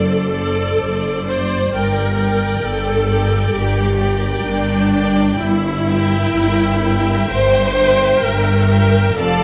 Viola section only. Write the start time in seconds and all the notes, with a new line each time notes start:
Already playing: A4
1.28 C5
1.74 A#4
2.63 A4
3.55 G4
4.47 D4
5.42 E4
7.31 C5
8.23 A#4
9.17 A4